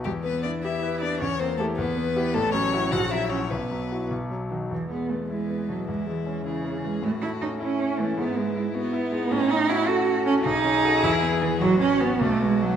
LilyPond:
<<
  \new Staff \with { instrumentName = "Violin" } { \time 6/8 \key e \minor \tempo 4. = 104 g'8 b'8 d''8 e''4 d''8 | cis''8 c''8 a'8 b'4. | \key e \major a'8 cis''4 fis''8 e''8 cis''8 | b'4. r4. |
r4. b'4. | e'4. gis'4. | fis'4. e'4.~ | e'4. fis'8 e'8 dis'8~ |
dis'4. cis'4. | gis'2. | fis'4. fis'4. | }
  \new Staff \with { instrumentName = "Grand piano" } { \time 6/8 \key e \minor e,8 b8 e'8 g'8 b'8 b8 | e,8 bes8 <e' g'>8 e,8 b8 <e' g'>8 | \key e \major a,,8 fis8 <e' fis'>8 ais,,8 fis8 <e' fis'>8 | b,,8 fis8 <e' fis'>8 b,,8 fis8 <dis' fis'>8 |
e,8 gis8 b8 e'8 b8 b,8 | e,8 gis8 cis'8 e'8 cis'8 e8 | a,8 a8 cis'8 e'8 cis'8 e8 | gis,8 b8 e'8 b8 e'8 gis8 |
a,8 cis'8 fis'8 a'8 fis'8 a8 | b,,8 cis'8 <fis' a'>8 e,8 b8 <e' gis'>8 | a,,8 cis'8 <cis' fis'>8 b,,8 b8 <dis' fis'>8 | }
  \new Staff \with { instrumentName = "Cello" } { \time 6/8 \key e \minor g8 b8 d'8 e'4 d'8 | cis'8 c'8 a8 b4. | \key e \major a8 cis'4 fis'8 e'8 cis'8 | b4. r4 dis8 |
e8 b8 a8 gis4 fis8 | gis8 e8 e8 cis4 gis8 | a8 e'8 dis'8 cis'4 a8 | b8 gis8 gis8 b4. |
cis'8 dis'8 e'8 fis'4 cis'8 | dis'4. e'8 r8 e8 | fis8 cis'8 b8 a8 gis8 fis8 | }
>>